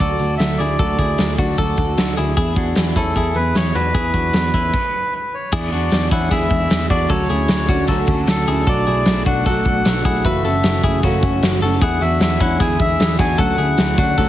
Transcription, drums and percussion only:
0.00 kick medium
0.19 closed hi-hat medium
0.40 snare loud
0.40 closed hi-hat medium
0.60 closed hi-hat medium
0.79 kick loud
0.79 closed hi-hat medium
0.99 kick medium
0.99 closed hi-hat medium
1.18 snare loud
1.18 closed hi-hat medium
1.38 kick medium
1.38 closed hi-hat medium
1.58 kick medium
1.58 closed hi-hat medium
1.77 kick medium
1.77 closed hi-hat medium
1.98 snare loud
1.98 closed hi-hat loud
2.18 closed hi-hat medium
2.37 kick medium
2.37 closed hi-hat medium
2.56 kick medium
2.56 closed hi-hat medium
2.76 snare loud
2.76 closed hi-hat medium
2.95 kick medium
2.95 closed hi-hat medium
3.16 kick medium
3.16 closed hi-hat medium
3.35 closed hi-hat medium
3.55 snare loud
3.55 closed hi-hat medium
3.75 closed hi-hat medium
3.95 kick loud
3.95 closed hi-hat medium
4.14 kick medium
4.14 closed hi-hat medium
4.34 snare loud
4.34 closed hi-hat medium
4.54 kick medium
4.54 closed hi-hat medium
4.74 kick medium
4.74 crash medium
5.52 kick loud
5.52 crash loud
5.73 closed hi-hat medium
5.92 snare loud
5.92 closed hi-hat medium
6.11 kick loud
6.11 closed hi-hat medium
6.31 kick medium
6.31 snare soft
6.31 closed hi-hat medium
6.50 kick loud
6.50 closed hi-hat medium
6.70 snare loud
6.70 closed hi-hat loud
6.90 kick medium
6.90 open hi-hat medium
7.10 kick loud
7.10 closed hi-hat medium
7.29 closed hi-hat medium
7.48 snare loud
7.48 closed hi-hat medium
7.68 kick medium
7.68 closed hi-hat medium
7.88 kick medium
7.88 snare soft
7.88 closed hi-hat medium
8.07 kick loud
8.07 closed hi-hat medium
8.27 snare loud
8.27 closed hi-hat loud
8.47 open hi-hat medium
8.67 kick loud
8.67 closed hi-hat medium
8.87 closed hi-hat medium
9.06 snare loud
9.06 closed hi-hat medium
9.26 kick loud
9.26 closed hi-hat medium
9.45 kick medium
9.45 snare soft
9.45 closed hi-hat medium
9.65 kick medium
9.65 closed hi-hat medium
9.85 snare loud
9.85 closed hi-hat medium
10.05 kick medium
10.05 open hi-hat medium
10.24 kick loud
10.24 closed hi-hat medium
10.45 closed hi-hat medium
10.63 snare loud
10.63 closed hi-hat medium
10.83 kick loud
10.83 closed hi-hat medium
11.03 kick medium
11.03 snare soft
11.03 closed hi-hat medium
11.22 kick loud
11.22 closed hi-hat medium
11.43 snare loud
11.43 closed hi-hat medium
11.62 open hi-hat medium
11.81 kick loud
11.81 closed hi-hat medium
12.01 closed hi-hat medium
12.20 snare loud
12.20 closed hi-hat medium
12.40 kick medium
12.40 closed hi-hat medium
12.60 kick medium
12.60 snare soft
12.60 closed hi-hat medium
12.79 kick medium
12.79 closed hi-hat medium
13.00 snare loud
13.00 closed hi-hat medium
13.19 kick medium
13.19 open hi-hat medium
13.38 kick loud
13.38 closed hi-hat medium
13.59 closed hi-hat medium
13.78 snare loud
13.78 closed hi-hat loud
13.98 kick loud
13.98 closed hi-hat medium
14.18 kick medium
14.18 snare soft
14.18 closed hi-hat medium

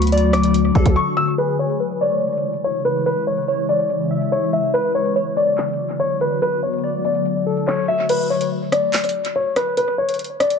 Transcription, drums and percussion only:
0.02 closed hi-hat medium
0.07 closed hi-hat medium
0.12 closed hi-hat medium
0.18 closed hi-hat medium
0.33 cross-stick loud
0.33 closed hi-hat medium
0.43 closed hi-hat medium
0.54 closed hi-hat medium
0.75 kick loud
0.86 kick loud
0.86 closed hi-hat medium
1.38 closed hi-hat medium
1.69 closed hi-hat medium
2.01 closed hi-hat medium
2.22 closed hi-hat soft
2.27 closed hi-hat medium
2.32 closed hi-hat medium
2.38 closed hi-hat medium
2.53 closed hi-hat medium
2.85 closed hi-hat medium
3.06 closed hi-hat medium
3.37 closed hi-hat medium
3.43 closed hi-hat medium
3.48 closed hi-hat medium
3.53 closed hi-hat medium
3.69 closed hi-hat medium
3.79 closed hi-hat medium
3.90 closed hi-hat medium
4.21 closed hi-hat medium
4.74 closed hi-hat medium
5.05 closed hi-hat medium
5.37 closed hi-hat medium
5.58 clap loud
5.58 closed hi-hat soft
5.63 closed hi-hat medium
5.68 closed hi-hat medium
5.73 closed hi-hat medium
5.89 closed hi-hat medium
6.21 closed hi-hat medium
6.42 closed hi-hat medium
6.73 closed hi-hat medium
6.78 closed hi-hat medium
6.84 closed hi-hat medium
6.89 closed hi-hat medium
7.05 closed hi-hat medium
7.15 closed hi-hat medium
7.25 closed hi-hat medium
7.57 closed hi-hat medium
7.67 clap loud
8.09 closed hi-hat medium
8.09 crash loud
8.41 closed hi-hat medium
8.72 cross-stick loud
8.72 closed hi-hat medium
8.93 clap loud
8.93 closed hi-hat soft
8.99 closed hi-hat medium
9.04 closed hi-hat medium
9.09 closed hi-hat medium
9.25 closed hi-hat medium
9.56 cross-stick medium
9.56 closed hi-hat medium
9.77 closed hi-hat medium
10.09 closed hi-hat medium
10.14 closed hi-hat medium
10.19 closed hi-hat medium
10.24 closed hi-hat medium
10.40 cross-stick loud
10.40 closed hi-hat medium
10.50 closed hi-hat medium

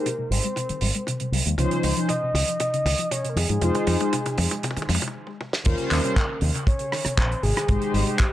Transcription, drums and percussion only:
0.06 closed hi-hat medium
0.06 mid tom medium
0.32 open hi-hat loud
0.43 closed hi-hat medium
0.56 closed hi-hat medium
0.56 mid tom medium
0.69 closed hi-hat medium
0.81 open hi-hat loud
0.95 closed hi-hat medium
1.07 closed hi-hat medium
1.07 mid tom medium
1.20 closed hi-hat soft
1.33 open hi-hat loud
1.46 closed hi-hat medium
1.58 closed hi-hat medium
1.58 mid tom medium
1.71 closed hi-hat soft
1.83 open hi-hat loud
1.83 mid tom medium
1.97 closed hi-hat medium
2.09 closed hi-hat medium
2.09 mid tom medium
2.35 open hi-hat loud
2.35 mid tom medium
2.48 closed hi-hat medium
2.60 closed hi-hat medium
2.60 mid tom medium
2.74 closed hi-hat medium
2.86 open hi-hat loud
2.86 mid tom medium
2.99 closed hi-hat medium
3.11 closed hi-hat medium
3.11 mid tom medium
3.25 closed hi-hat medium
3.37 open hi-hat loud
3.37 mid tom medium
3.49 closed hi-hat medium
3.62 closed hi-hat medium
3.62 mid tom loud
3.75 closed hi-hat medium
3.75 mid tom medium
3.87 open hi-hat loud
3.87 mid tom loud
4.00 closed hi-hat medium
4.00 mid tom medium
4.13 closed hi-hat medium
4.13 mid tom medium
4.26 closed hi-hat soft
4.26 mid tom medium
4.38 open hi-hat loud
4.38 mid tom loud
4.51 closed hi-hat medium
4.51 mid tom medium
4.63 closed hi-hat medium
4.63 mid tom loud
4.71 mid tom loud
4.77 closed hi-hat soft
4.77 mid tom medium
4.82 mid tom medium
4.89 open hi-hat loud
4.89 mid tom loud
4.95 mid tom loud
5.02 closed hi-hat medium
5.02 mid tom medium
5.08 mid tom medium
5.27 high tom soft
5.41 mid tom medium
5.53 snare medium
5.65 kick loud
5.65 closed hi-hat loud
5.65 crash loud
5.78 closed hi-hat medium
5.90 clap medium
5.90 open hi-hat loud
6.04 closed hi-hat medium
6.16 kick loud
6.16 clap loud
6.16 closed hi-hat medium
6.41 open hi-hat loud
6.55 closed hi-hat medium
6.67 kick loud
6.67 closed hi-hat medium
6.79 closed hi-hat medium
6.92 cross-stick medium
6.92 open hi-hat loud
7.05 cross-stick medium
7.05 closed hi-hat medium
7.18 kick loud
7.18 clap loud
7.18 closed hi-hat medium
7.32 closed hi-hat soft
7.43 open hi-hat loud
7.57 cross-stick medium
7.57 closed hi-hat medium
7.69 kick loud
7.69 closed hi-hat medium
7.82 closed hi-hat medium
7.94 open hi-hat loud
8.07 closed hi-hat medium
8.19 kick loud
8.19 clap loud
8.19 closed hi-hat medium

